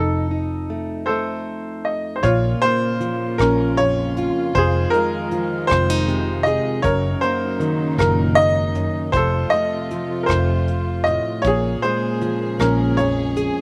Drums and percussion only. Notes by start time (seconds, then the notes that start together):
2.23 kick, closed hi-hat
2.62 closed hi-hat
3.01 closed hi-hat
3.39 kick, cross-stick, closed hi-hat
3.78 closed hi-hat
4.17 closed hi-hat
4.55 kick, closed hi-hat
4.94 closed hi-hat
5.31 closed hi-hat
5.70 kick, cross-stick, closed hi-hat
6.08 closed hi-hat
6.46 closed hi-hat
6.84 kick, closed hi-hat
7.22 closed hi-hat
7.60 closed hi-hat
7.98 kick, cross-stick, closed hi-hat
8.37 closed hi-hat
8.75 closed hi-hat
9.13 kick, closed hi-hat
9.52 closed hi-hat
9.91 closed hi-hat
10.28 kick, cross-stick, closed hi-hat
10.68 closed hi-hat
11.06 closed hi-hat
11.44 kick, closed hi-hat
11.83 closed hi-hat
12.21 closed hi-hat
12.59 kick, cross-stick, closed hi-hat
12.98 closed hi-hat
13.36 closed hi-hat